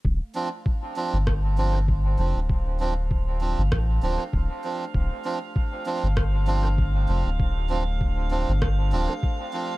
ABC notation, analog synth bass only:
X:1
M:4/4
L:1/16
Q:"Swing 16ths" 1/4=98
K:Dm
V:1 name="Analog synth bass" clef=bass
D,,, z6 G,,,6- G,,, F,,, D,,,- | D,,,6- D,,, G,,, A,,,2 D,,, z D,,, z3 | D,,, z6 G,,,6- G,,, F,,, D,,,- | D,,,6- D,,, G,,,3 D,,, z4 z |]